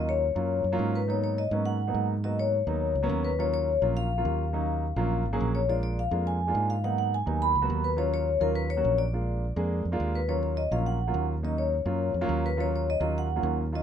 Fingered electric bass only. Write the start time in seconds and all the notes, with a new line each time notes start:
Already playing: D#2
0.36 F#2
0.64 F#2
0.79 G#2
1.51 G#2
1.94 G#2
2.67 D#2
2.95 C#2
3.09 D#2
3.82 A#1
4.25 D#2
4.96 A#1
5.25 G#1
5.40 A#1
6.11 F2
6.55 G#2
7.27 D#2
7.55 C#2
7.70 D#2
8.41 D#2
8.84 A#1
9.56 F2
9.85 F2
10.00 D#2
10.71 A#1
11.14 D#2
11.86 F#2
12.14 F2
12.29 D#2
13.00 D#2
13.43 D#2